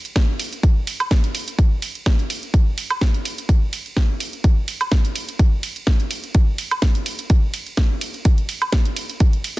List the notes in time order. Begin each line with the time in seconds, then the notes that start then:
0.05 closed hi-hat
0.16 kick, snare, closed hi-hat
0.40 open hi-hat, ride
0.53 closed hi-hat
0.63 kick, closed hi-hat
0.87 open hi-hat, ride
1.00 closed hi-hat, high woodblock
1.11 kick, snare, closed hi-hat
1.24 closed hi-hat
1.35 open hi-hat, ride
1.48 closed hi-hat
1.59 kick, closed hi-hat
1.82 open hi-hat, ride
1.95 closed hi-hat
2.06 kick, snare, closed hi-hat
2.19 closed hi-hat
2.30 open hi-hat, ride
2.43 closed hi-hat
2.54 kick, closed hi-hat
2.78 open hi-hat, ride
2.90 closed hi-hat, high woodblock
3.01 kick, snare, closed hi-hat
3.14 closed hi-hat
3.25 open hi-hat, ride
3.38 closed hi-hat
3.49 kick, closed hi-hat
3.73 open hi-hat, ride
3.86 closed hi-hat
3.97 kick, snare, closed hi-hat
4.20 open hi-hat, ride
4.33 closed hi-hat
4.44 kick, closed hi-hat
4.68 open hi-hat, ride
4.81 closed hi-hat, high woodblock
4.92 kick, snare, closed hi-hat
5.05 closed hi-hat
5.16 open hi-hat, ride
5.29 closed hi-hat
5.39 kick, closed hi-hat
5.63 open hi-hat, ride
5.76 closed hi-hat
5.87 kick, snare, closed hi-hat
6.00 closed hi-hat
6.11 open hi-hat, ride
6.24 closed hi-hat
6.35 kick, closed hi-hat
6.58 open hi-hat, ride
6.71 closed hi-hat, high woodblock
6.82 kick, snare, closed hi-hat
6.95 closed hi-hat
7.06 open hi-hat, ride
7.19 closed hi-hat
7.30 kick, closed hi-hat
7.54 open hi-hat, ride
7.66 closed hi-hat
7.77 kick, snare, closed hi-hat
8.01 open hi-hat, ride
8.14 closed hi-hat
8.25 kick, closed hi-hat
8.38 closed hi-hat
8.49 open hi-hat, ride
8.62 closed hi-hat, high woodblock
8.72 kick, snare, closed hi-hat
8.85 closed hi-hat
8.96 open hi-hat, ride
9.10 closed hi-hat
9.20 kick, closed hi-hat
9.33 closed hi-hat
9.44 open hi-hat, ride